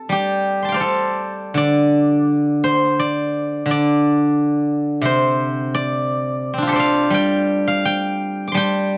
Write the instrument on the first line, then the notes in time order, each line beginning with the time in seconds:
guzheng
Already playing: A4
0.09 G3 G4
0.63 A5 C6
0.69 F5 G5
0.74 C5 D5
0.81 A4
1.54 D3 D5
2.64 C5
2.99 D5
3.66 D3
3.71 D5
5.02 C3 C5
5.75 D5
6.54 C4
6.58 D4
6.62 F4
6.67 G4 A4
6.72 C5 D5
6.79 F5
7.10 G3 G5
7.67 F5
7.85 G5
8.48 D6
8.52 G3 A5 C6
8.57 G5